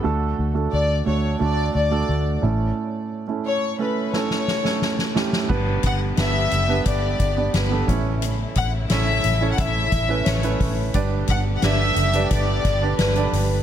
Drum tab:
CC |----------------|----------------|x---------------|----------------|
HH |----------------|----------------|--x-x-x-x-x-x-x-|x-x-x-x-x-x-xxo-|
SD |----------------|--------oooooooo|----o-----o-o---|----o-------o---|
BD |----------------|----------------|o-o-----o-o---o-|--o-----o-o---o-|

CC |----------------|
HH |x-x-x-xxx-x-xxo-|
SD |----o-----o-o---|
BD |o-o-----o-o-----|